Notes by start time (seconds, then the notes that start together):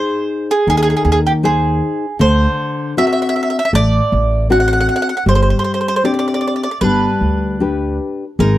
Already playing: D#4 G#4 C5
0.51 G#4
0.67 D#2 D#3 G#4
0.77 G#4
0.83 G#4
0.90 G#4
0.97 G#4
1.05 D#2 G#4
1.12 G#4
1.27 G4
1.43 D#4 G#4 C5
2.19 D2 D3 C5
2.97 C4 D4 F#4 E5
3.07 E5
3.13 E5
3.22 E5
3.29 E5
3.36 E5
3.43 E5
3.50 E5
3.59 E5
3.65 E5
3.73 A1 A3 D5
4.12 A1
4.50 C4 D4 F#4 F#5
4.60 F#5
4.68 F#5
4.73 F#5
4.80 F#5
4.89 F#5
4.96 F#5
5.02 F#5
5.09 F#5
5.17 F#5
5.26 G1 G3 C5
5.35 C5
5.42 C5
5.50 C5
5.59 C5
5.64 C5
5.74 C5
5.81 C5
5.88 C5
5.96 C5
6.04 C4 D4 G4 D5
6.14 D5
6.19 D5
6.28 D5
6.34 D5
6.41 D5
6.47 D5
6.56 D5
6.63 D5
6.71 D5
6.81 G1 G3 D4 B4
7.21 D2
7.60 D4 G4 B4
8.39 G#1 G#3 D#4 A#4